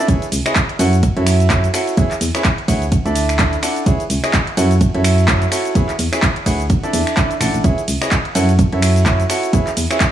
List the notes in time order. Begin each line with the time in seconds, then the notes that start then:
0.08 C#2 G#4 B4 C#5 E5, kick, closed hi-hat, cabasa
0.22 closed hi-hat, cabasa
0.32 C#2, open hi-hat, ride, cabasa
0.46 E4 G#4 B4 C#5 D#5, finger snap, closed hi-hat, cabasa
0.56 kick, clap, closed hi-hat, cabasa
0.69 closed hi-hat
0.79 F#2 E4 F#4 A4 C#5 F#5, open hi-hat, ride, cabasa
0.93 closed hi-hat, cabasa
1.03 kick, closed hi-hat, cabasa
1.17 F#2 E4 F#4 A4 C#5 E5, closed hi-hat
1.27 finger snap, open hi-hat, ride, cabasa
1.40 closed hi-hat, cabasa
1.50 E4 F#4 A4 C#5 E5, kick, clap, closed hi-hat, cabasa
1.64 closed hi-hat, cabasa
1.74 E4 F#4 A4 C#5 F#5, finger snap, open hi-hat, ride, cabasa
1.87 closed hi-hat, cabasa
1.97 E2 E4 G#4 B4 C#5 E5, kick, closed hi-hat, cabasa
2.11 clap, closed hi-hat, cabasa
2.21 E2, open hi-hat, ride, cabasa
2.35 E4 G#4 B4 C#5 E5, finger snap, closed hi-hat, cabasa
2.44 kick, clap, closed hi-hat, cabasa
2.58 closed hi-hat
2.68 D2 E4 G#4 B4 C#5 F#5, kick, open hi-hat, ride, cabasa
2.82 closed hi-hat, cabasa
2.92 kick, closed hi-hat, cabasa
3.05 D2 D4 E4 A4 D5 E5, closed hi-hat, cabasa
3.16 open hi-hat, ride, cabasa
3.29 finger snap, closed hi-hat, cabasa
3.39 D4 E4 A4 D5 E5, kick, clap, closed hi-hat, cabasa
3.53 closed hi-hat, cabasa
3.63 D4 E4 A4 D5 F#5, finger snap, open hi-hat, ride, cabasa
3.76 closed hi-hat, cabasa
3.86 C#2 E4 G#4 B4 C#5 E5, kick, closed hi-hat, cabasa
4.00 closed hi-hat, cabasa
4.10 C#2, open hi-hat, ride, cabasa
4.24 E4 G#4 B4 C#5 D#5, finger snap, closed hi-hat, cabasa
4.33 kick, clap, closed hi-hat, cabasa
4.47 closed hi-hat
4.57 F#2 E4 F#4 A4 C#5 F#5, open hi-hat, ride, cabasa
4.71 closed hi-hat, cabasa
4.81 kick, closed hi-hat, cabasa
4.95 F#2 E4 F#4 A4 C#5 E5, closed hi-hat
5.04 finger snap, open hi-hat, ride, cabasa
5.18 closed hi-hat, cabasa
5.28 E4 F#4 A4 C#5 E5, kick, clap, closed hi-hat, cabasa
5.42 closed hi-hat, cabasa
5.52 E4 F#4 A4 C#5 F#5, finger snap, open hi-hat, ride, cabasa
5.65 closed hi-hat, cabasa
5.75 E2 E4 G#4 B4 C#5 E5, kick, closed hi-hat, cabasa
5.89 clap, closed hi-hat, cabasa
5.99 E2, open hi-hat, ride, cabasa
6.13 E4 G#4 B4 C#5 E5, finger snap, closed hi-hat, cabasa
6.22 kick, clap, closed hi-hat, cabasa
6.36 closed hi-hat
6.46 D2 E4 G#4 B4 C#5 F#5, kick, open hi-hat, ride, cabasa
6.60 closed hi-hat, cabasa
6.70 kick, closed hi-hat, cabasa
6.83 D4 E4 A4 D5 E5, closed hi-hat, cabasa
6.93 E2, open hi-hat, ride, cabasa
7.07 finger snap, closed hi-hat, cabasa
7.17 D4 E4 A4 D5 E5, kick, clap, closed hi-hat, cabasa
7.31 closed hi-hat, cabasa
7.41 A1 D4 E4 A4 D5 F#5, finger snap, open hi-hat, ride, cabasa
7.54 A1, closed hi-hat, cabasa
7.64 C#2 E4 G#4 B4 C#5 E5, kick, closed hi-hat, cabasa
7.78 closed hi-hat, cabasa
7.88 C#2, open hi-hat, ride, cabasa
8.02 E4 G#4 B4 C#5 D#5, finger snap, closed hi-hat, cabasa
8.11 kick, clap, closed hi-hat, cabasa
8.25 closed hi-hat
8.35 F#2 E4 F#4 A4 C#5 F#5, open hi-hat, ride, cabasa
8.49 closed hi-hat, cabasa
8.59 kick, closed hi-hat, cabasa
8.72 F#2 E4 F#4 A4 C#5 E5, closed hi-hat
8.82 finger snap, open hi-hat, ride, cabasa
8.96 closed hi-hat, cabasa
9.06 E4 F#4 A4 C#5 E5, kick, clap, closed hi-hat, cabasa
9.20 closed hi-hat, cabasa
9.30 E4 F#4 A4 C#5 F#5, finger snap, open hi-hat, ride, cabasa
9.43 closed hi-hat, cabasa
9.53 E2 E4 G#4 B4 C#5 E5, kick, closed hi-hat, cabasa
9.67 clap, closed hi-hat, cabasa
9.77 E2, open hi-hat, ride, cabasa
9.91 E4 G#4 B4 C#5 E5, finger snap, closed hi-hat, cabasa
10.00 kick, clap, closed hi-hat, cabasa